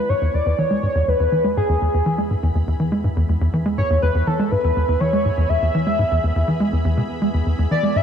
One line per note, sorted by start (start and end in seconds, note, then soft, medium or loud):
0.00 7.44 E2 medium
0.00 8.03 E3 medium
0.00 8.03 B3 medium
0.00 0.73 E4 medium
0.00 0.11 B4 medium
0.00 0.33 D5 medium
0.00 8.03 G#5 medium
0.09 0.14 G#2 medium
0.09 8.03 G#4 medium
0.09 0.36 C#5 loud
0.15 8.03 E5 medium
0.22 0.29 E2 medium
0.34 0.41 E2 medium
0.34 0.60 D5 loud
0.46 0.54 E2 loud
0.58 0.70 E3 medium
0.58 1.10 C#5 loud
0.71 0.82 G#3 medium
0.83 0.87 G#2 medium
0.83 8.03 B5 medium
0.95 1.03 E2 loud
1.08 1.15 E2 medium
1.08 1.57 B4 loud
1.20 1.27 E2 loud
1.32 1.44 E3 medium
1.44 1.56 G#3 medium
1.57 1.61 G#2 medium
1.57 2.51 G#4 medium
1.69 1.77 E2 loud
1.81 1.89 E2 medium
1.94 2.01 E2 medium
2.06 2.17 E3 medium
2.18 2.30 G#3 medium
2.30 2.35 G#2 medium
2.43 2.50 E2 loud
2.55 2.63 E2 medium
2.67 2.75 E2 loud
2.80 2.91 E3 medium
2.92 3.03 G#3 medium
3.04 3.09 G#2 medium
3.16 3.24 E2 medium
3.29 3.37 E2 medium
3.41 3.49 E2 loud
3.53 3.65 E3 medium
3.66 3.77 G#3 medium
3.78 3.82 G#2 medium
3.78 4.01 C#5 medium
3.90 3.98 E2 loud
4.02 4.10 E2 medium
4.02 4.28 B4 medium
4.15 4.23 E2 medium
4.27 4.39 E3 medium
4.27 4.53 A4 medium
4.39 4.51 G#3 medium
4.51 4.56 G#2 medium
4.51 5.02 B4 loud
4.64 4.72 E2 loud
4.76 4.84 E2 medium
4.88 4.96 E2 loud
5.00 5.12 E3 medium
5.00 5.51 C#5 medium
5.13 5.25 G#3 medium
5.25 5.30 G#2 medium
5.37 5.45 E2 loud
5.49 5.58 E2 medium
5.49 6.48 E5 loud
5.62 5.70 E2 medium
5.75 5.86 E3 medium
5.87 5.98 G#3 medium
5.99 6.04 G#2 medium
6.11 6.19 E2 medium
6.24 6.31 E2 medium
6.36 6.44 E2 medium
6.48 6.60 E3 medium
6.60 6.72 G#3 medium
6.73 6.84 E2 medium
6.85 6.97 E2 loud
6.97 7.02 B2 medium
7.22 7.30 G#3 medium
7.34 7.42 E2 medium
7.46 7.54 E2 medium
7.46 8.03 E2 medium
7.59 7.67 E2 medium
7.71 7.83 E3 medium
7.71 7.98 D5 medium
7.83 7.95 G#3 medium
7.96 8.00 G#2 medium
7.96 8.03 E5 loud